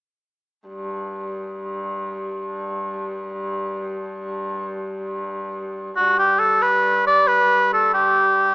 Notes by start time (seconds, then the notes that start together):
0.67 G2
5.94 G2 F#4
6.18 G4
6.39 A4
6.62 B4
7.07 D5
7.28 B4
7.73 A4
7.94 G4